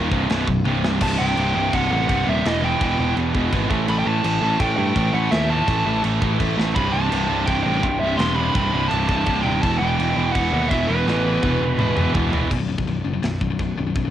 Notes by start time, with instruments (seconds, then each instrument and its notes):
Already playing: picked electric bass D#1, distorted electric guitar D#2 A#2 D#3
0.11 picked electric bass C1, distorted electric guitar C2 G2 C3, kick
0.28 picked electric bass B0, distorted electric guitar B1 F#2 B2, snare, crash
0.47 picked electric bass B0, distorted electric guitar B1 F#2, kick
0.64 picked electric bass C1, distorted electric guitar C2 G2 C3, high tom
0.84 snare
1.01 picked electric bass C1, distorted electric guitar C2 G2 C3, lead electric guitar A5, kick, crash
1.18 picked electric bass C1, distorted electric guitar C2 G2 C3, lead electric guitar G5
1.36 picked electric bass C1, distorted electric guitar C2 G2 C3, crash
1.54 picked electric bass C1, distorted electric guitar C2 G2 C3
1.73 picked electric bass C1, distorted electric guitar C2 G2 C3, lead electric guitar F#5, kick, crash
1.90 picked electric bass A1, distorted electric guitar C2 G2 C3, lead electric guitar F#5
2.07 picked electric bass C1, distorted electric guitar C2 G2 C3, kick, crash
2.25 picked electric bass D#1, distorted electric guitar C2 G2 C3, lead electric guitar E5
2.44 picked electric bass E1, distorted electric guitar E2 B2 E3, lead electric guitar D#5, snare, crash
2.62 distorted electric guitar E2 B2 E3, lead electric guitar G5
2.80 picked electric bass E1, distorted electric guitar E2 B2 E3, kick, crash
2.99 picked electric bass E1, distorted electric guitar E2 B2 E3
3.16 picked electric bass E1, distorted electric guitar E2 B2 E3, crash
3.35 picked electric bass E1, distorted electric guitar E2 B2 E3, kick
3.52 picked electric bass G#1, distorted electric guitar E2 B2 E3, kick, crash
3.70 picked electric bass A1, distorted electric guitar A2 E3 A3, kick
3.88 picked electric bass A1, distorted electric guitar A2 E3 A3, lead electric guitar B5, crash
3.99 lead electric guitar G5
4.06 picked electric bass A1, distorted electric guitar A2 E3 A3, lead electric guitar A5
4.24 picked electric bass A1, distorted electric guitar A2 E3 A3, crash
4.41 picked electric bass A1, distorted electric guitar A2 E3 A3
4.60 picked electric bass A1, distorted electric guitar A2 E3 A3, lead electric guitar G5, kick, crash
4.77 picked electric bass G2, distorted electric guitar A2 E3 A3, lead electric guitar G5
4.96 picked electric bass A1, distorted electric guitar A2 E3 A3, kick, crash
5.13 picked electric bass A1, distorted electric guitar A2 E3 A3, lead electric guitar F#5
5.31 picked electric bass D#2, distorted electric guitar A2 E3 A3, lead electric guitar E5, snare, crash
5.50 distorted electric guitar A2 E3 A3, lead electric guitar A5
5.68 picked electric bass A1, distorted electric guitar A2 E3 A3, kick, crash
5.86 picked electric bass A1, distorted electric guitar A2 E3 A3
6.04 picked electric bass A1, distorted electric guitar A2 E3 A3, crash
6.22 picked electric bass A1, distorted electric guitar A2 E3 A3, kick
6.40 picked electric bass A1, distorted electric guitar A2 E3 A3, kick, crash
6.58 picked electric bass A1, distorted electric guitar A2 E3 A3, snare
6.75 picked electric bass C1, distorted electric guitar C2 G2 C3, lead electric guitar B5, kick, crash
6.93 picked electric bass C1, distorted electric guitar C2 G2 C3, lead electric guitar A5
7.11 picked electric bass C1, distorted electric guitar C2 G2 C3, crash
7.29 picked electric bass C1, distorted electric guitar C2 G2 C3
7.46 picked electric bass C1, distorted electric guitar C2 G2 C3, lead electric guitar G5, kick, crash
7.63 picked electric bass A1, distorted electric guitar C2 G2 C3, lead electric guitar G5
7.83 picked electric bass C1, distorted electric guitar C2 G2 C3, kick, crash
8.00 picked electric bass C1, distorted electric guitar C2 G2 C3, lead electric guitar E5
8.17 picked electric bass E1, distorted electric guitar C2 G2 C3, lead electric guitar C6, snare, crash
8.36 distorted electric guitar C2 G2 C3, lead electric guitar B5
8.54 picked electric bass C1, distorted electric guitar C2 G2 C3, kick, crash
8.73 picked electric bass C1, distorted electric guitar C2 G2 C3
8.88 picked electric bass C1, distorted electric guitar C2 G2 C3, lead electric guitar A5, crash
9.08 picked electric bass C1, distorted electric guitar C2 G2 C3, lead electric guitar A5, kick
9.26 picked electric bass C1, distorted electric guitar C2 G2 C3, kick, crash
9.43 picked electric bass D#1, distorted electric guitar C2 G2 C3, lead electric guitar G5
9.62 picked electric bass E1, distorted electric guitar E2 B2 E3, lead electric guitar A5, kick, crash
9.79 picked electric bass E1, distorted electric guitar E2 B2 E3, lead electric guitar G5
9.98 picked electric bass E1, distorted electric guitar E2 B2 E3, crash
10.16 picked electric bass E1, distorted electric guitar E2 B2 E3
10.32 picked electric bass E1, distorted electric guitar E2 B2 E3, lead electric guitar F#5, kick, crash
10.52 picked electric bass D#2, distorted electric guitar E2 B2 E3
10.69 picked electric bass E1, distorted electric guitar E2 B2 E3, lead electric guitar E5, kick, crash
10.87 picked electric bass E1, distorted electric guitar E2 B2 E3, lead electric guitar B4
11.07 picked electric bass A1, distorted electric guitar E2 B2 E3, snare
11.25 distorted electric guitar E2 B2 E3
11.42 picked electric bass E1, distorted electric guitar E2 B2 E3, kick, high tom
11.60 picked electric bass E1, distorted electric guitar E2 B2 E3
11.78 picked electric bass E1, distorted electric guitar E2 B2 E3, mid tom
11.96 picked electric bass E1, distorted electric guitar E2 B2 E3, mid tom
12.14 picked electric bass E1, distorted electric guitar E2 B2 E3, kick, floor tom
12.32 picked electric bass E1, distorted electric guitar E2 B2 E3, floor tom
12.50 picked electric bass B0, distorted electric guitar B1 F#2 B2, kick, crash, china
12.59 distorted electric guitar B1 F#2
12.68 picked electric bass B0, distorted electric guitar B1 F#2
12.78 distorted electric guitar B1 F#2, kick
12.86 picked electric bass B0, distorted electric guitar B1 F#2, china
13.04 picked electric bass F#1, distorted electric guitar B1 F#2
13.14 distorted electric guitar B1 F#2
13.22 picked electric bass B0, distorted electric guitar B1 F#2, snare, china
13.41 picked electric bass B0, distorted electric guitar B1 F#2, kick
13.50 distorted electric guitar B1 F#2
13.59 picked electric bass B0, distorted electric guitar B1 F#2, kick, china
13.78 picked electric bass B0, distorted electric guitar B1 F#2
13.87 distorted electric guitar B1 F#2
13.95 picked electric bass B0, distorted electric guitar B1 F#2, kick, china
14.05 distorted electric guitar B1 F#2